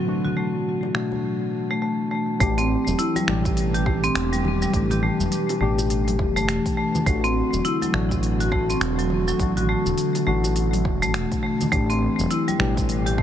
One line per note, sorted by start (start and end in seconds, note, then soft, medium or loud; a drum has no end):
0.00 1.24 A2 medium
0.00 0.94 B2 medium
0.00 1.24 D3 loud
0.00 0.06 E3 medium
0.00 0.07 A3 medium
0.00 1.24 A3 medium
0.00 0.08 D4 medium
0.00 0.09 F#4 medium
0.00 1.24 F#4 medium
0.00 1.24 C5 medium
0.06 0.91 E3 medium
0.06 0.92 A3 medium
0.06 0.92 D4 medium
0.06 0.93 F#4 medium
0.25 0.35 F#4 medium
0.25 low conga medium
0.36 0.53 A3 medium
0.36 high conga soft
0.83 high bongo medium
0.94 1.19 B2 medium
0.94 1.19 E3 medium
0.94 1.19 A3 medium
0.94 1.52 A3 medium
0.94 1.20 D4 medium
0.94 1.20 F#4 medium
0.94 finger snap medium
1.12 high bongo medium
1.12 high conga medium
1.70 1.81 A3 medium
1.82 2.10 A3 medium
2.11 2.39 A3 medium
2.39 2.76 A1 medium
2.39 3.24 E3 medium
2.39 7.07 E3 medium
2.39 2.57 A3 loud
2.39 3.25 A3 medium
2.39 3.25 D4 medium
2.39 3.26 G4 medium
2.39 kick loud
2.39 open hi-hat medium
2.39 cabasa medium
2.58 2.69 C4 loud
2.58 open hi-hat soft
2.58 cabasa soft
2.87 2.94 E1 loud
2.87 high conga medium
2.87 cabasa medium
2.99 3.15 E4 medium
2.99 open hi-hat medium
2.99 cabasa medium
3.07 7.07 G4 medium
3.15 3.23 G3 medium
3.15 open hi-hat soft
3.15 high bongo medium
3.15 high conga medium
3.15 cabasa soft
3.27 4.08 A1 medium
3.27 3.52 B2 medium
3.27 3.52 E3 medium
3.27 3.52 A3 medium
3.27 3.53 D4 medium
3.27 3.53 G4 medium
3.27 finger snap medium
3.44 kick loud
3.44 open hi-hat soft
3.44 high bongo medium
3.44 cabasa medium
3.57 open hi-hat medium
3.57 cabasa medium
3.74 3.85 G4 medium
3.74 open hi-hat soft
3.74 cabasa soft
3.86 4.03 A3 medium
3.86 kick loud
3.86 high bongo medium
4.04 4.31 C4 medium
4.04 open hi-hat soft
4.04 cabasa medium
4.15 4.66 E1 loud
4.15 finger snap medium
4.15 open hi-hat medium
4.15 cabasa medium
4.33 4.39 G3 medium
4.33 open hi-hat soft
4.33 cabasa soft
4.44 high bongo medium
4.44 low conga medium
4.62 4.73 G3 medium
4.62 high conga medium
4.62 cabasa medium
4.73 5.09 A1 loud
4.73 5.58 E3 medium
4.73 5.58 A3 medium
4.73 5.59 D4 medium
4.73 5.59 G4 medium
4.73 kick loud
4.73 open hi-hat medium
4.73 cabasa medium
4.90 5.01 G4 medium
4.90 open hi-hat soft
4.90 low conga loud
4.90 cabasa soft
5.03 5.19 A3 medium
5.20 5.27 E1 medium
5.20 high conga medium
5.20 cabasa medium
5.32 open hi-hat medium
5.32 cabasa medium
5.49 open hi-hat soft
5.49 high bongo medium
5.49 cabasa soft
5.60 6.18 A1 medium
5.60 5.85 B2 medium
5.60 5.85 E3 medium
5.60 6.18 A3 medium
5.60 5.86 A3 medium
5.60 5.86 D4 medium
5.60 5.86 G4 loud
5.78 open hi-hat soft
5.78 high bongo medium
5.78 cabasa medium
5.90 open hi-hat medium
5.90 cabasa medium
6.08 open hi-hat soft
6.08 high conga medium
6.08 cabasa soft
6.19 6.38 E1 medium
6.19 kick loud
6.19 high bongo medium
6.36 6.49 G1 medium
6.36 6.47 A3 loud
6.36 open hi-hat soft
6.36 cabasa medium
6.48 6.59 E1 medium
6.48 6.76 A3 medium
6.48 finger snap medium
6.48 open hi-hat medium
6.48 cabasa medium
6.66 kick medium
6.66 open hi-hat soft
6.66 cabasa soft
6.77 7.05 A3 medium
6.95 high bongo medium
6.95 low conga loud
6.95 cabasa medium
7.06 7.42 A1 medium
7.06 11.73 D3 loud
7.06 7.91 E3 medium
7.06 7.23 A3 loud
7.06 7.91 A3 medium
7.06 7.92 D4 medium
7.06 7.92 F#4 medium
7.06 kick loud
7.06 open hi-hat medium
7.06 cabasa medium
7.24 7.35 C4 loud
7.24 open hi-hat soft
7.24 cabasa soft
7.37 11.73 F#4 medium
7.49 7.60 E1 loud
7.49 13.23 A3 medium
7.49 high conga medium
7.53 cabasa medium
7.65 7.81 E4 medium
7.65 open hi-hat medium
7.65 cabasa medium
7.82 7.89 F#3 medium
7.82 open hi-hat soft
7.82 high bongo medium
7.82 high conga medium
7.82 cabasa soft
7.93 8.74 A1 medium
7.93 8.18 B2 medium
7.93 8.18 E3 medium
7.93 8.18 A3 medium
7.93 8.19 D4 medium
7.93 8.19 F#4 loud
7.93 finger snap medium
8.11 kick loud
8.11 open hi-hat soft
8.11 high bongo medium
8.11 cabasa medium
8.23 open hi-hat medium
8.23 cabasa medium
8.40 8.51 F#4 medium
8.40 open hi-hat soft
8.40 cabasa soft
8.51 8.69 A3 medium
8.51 kick loud
8.51 high bongo medium
8.70 8.97 C4 medium
8.70 open hi-hat soft
8.70 cabasa medium
8.81 9.32 E1 loud
8.81 finger snap medium
8.81 open hi-hat medium
8.81 cabasa medium
8.99 9.05 F#3 medium
8.99 open hi-hat soft
8.99 cabasa soft
9.10 high bongo medium
9.10 low conga medium
9.27 9.39 F#3 medium
9.27 high conga medium
9.27 cabasa medium
9.38 9.75 A1 loud
9.38 10.24 E3 medium
9.38 10.24 A3 medium
9.38 10.25 D4 medium
9.38 10.25 F#4 medium
9.38 kick loud
9.38 open hi-hat medium
9.38 cabasa medium
9.57 9.67 F#4 medium
9.57 open hi-hat soft
9.57 low conga medium
9.57 cabasa soft
9.69 9.85 A3 medium
9.86 9.93 E1 loud
9.86 high conga medium
9.86 cabasa medium
9.98 open hi-hat medium
9.98 cabasa medium
10.15 open hi-hat soft
10.15 high bongo medium
10.15 cabasa soft
10.26 10.84 A1 medium
10.26 10.51 B2 medium
10.26 10.51 E3 medium
10.26 10.84 A3 medium
10.26 10.51 A3 medium
10.26 10.52 D4 medium
10.26 10.52 F#4 loud
10.44 open hi-hat soft
10.44 high bongo medium
10.44 cabasa medium
10.56 open hi-hat medium
10.56 cabasa medium
10.73 open hi-hat soft
10.73 high conga medium
10.73 cabasa soft
10.85 11.04 E1 medium
10.85 kick loud
10.85 high bongo medium
11.02 11.16 A1 medium
11.02 11.13 A3 medium
11.02 open hi-hat soft
11.02 cabasa medium
11.14 11.25 E1 medium
11.14 11.42 A3 medium
11.14 finger snap medium
11.14 open hi-hat medium
11.14 cabasa medium
11.32 kick medium
11.32 open hi-hat soft
11.32 cabasa soft
11.43 11.71 A3 medium
11.61 open hi-hat soft
11.61 high bongo soft
11.61 low conga medium
11.61 cabasa medium
11.71 12.08 A1 medium
11.71 12.57 E3 medium
11.71 13.23 E3 loud
11.71 11.89 A3 loud
11.71 12.57 A3 medium
11.71 12.57 D4 medium
11.71 12.58 G4 medium
11.71 kick loud
11.71 open hi-hat medium
11.71 cabasa medium
11.90 12.01 C4 loud
11.90 open hi-hat soft
11.90 cabasa soft
12.19 12.26 E1 medium
12.19 high conga medium
12.19 cabasa medium
12.31 12.47 E4 medium
12.31 open hi-hat medium
12.31 cabasa medium
12.48 12.55 G3 medium
12.48 open hi-hat soft
12.48 high bongo medium
12.48 high conga medium
12.48 cabasa soft
12.59 13.23 A1 medium
12.59 12.84 B2 medium
12.59 12.84 E3 medium
12.59 12.84 A3 medium
12.59 12.84 D4 medium
12.59 12.85 G4 loud
12.59 finger snap medium
12.77 13.23 G4 medium
12.77 kick loud
12.77 open hi-hat soft
12.77 high bongo medium
12.77 cabasa medium
12.89 open hi-hat medium
12.89 cabasa medium
13.06 13.17 G4 medium
13.06 open hi-hat soft
13.06 cabasa soft
13.18 13.23 A3 medium
13.18 kick loud
13.18 high bongo medium